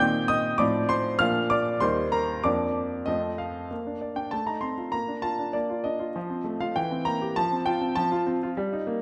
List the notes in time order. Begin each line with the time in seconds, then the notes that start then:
Already playing: G6
0.00 A#2 D#3 C4 D#4 G5
0.28 D#5 D#6
0.58 A2 F3 C4 D#4 D5 D6
0.89 C5 C6
1.19 A#2 F3 A#3 D4 F5 F6
1.50 D5 D6
1.80 D#2 G3 A#3 D#4 C5 C6
2.12 A#4 A#5
2.44 F2 F3 A#3 D4 D5 D6
3.06 F2 F3 A3 C4 D#5
3.38 F5
3.71 A#3
3.87 D4
4.01 D5
4.16 D4 G5
4.31 A3 A5
4.47 D#4 A#5
4.61 C4 C6
4.78 F4
4.92 A#3 A#5
5.08 D4
5.22 F4 A5
5.39 D4
5.53 A#3 D5
5.70 F4
5.84 D4 D#5
5.99 F4
6.16 F3
6.30 C4
6.44 A3
6.60 F4 F5
6.76 E3 G5
6.91 C4
7.05 A#3 A#5
7.22 G4
7.36 F3 A5
7.52 C4
7.66 F4 G5
7.81 C4
7.95 F3 A5
8.12 F4
8.27 C4
8.43 F4
8.57 G3
8.73 D#4
8.87 A#3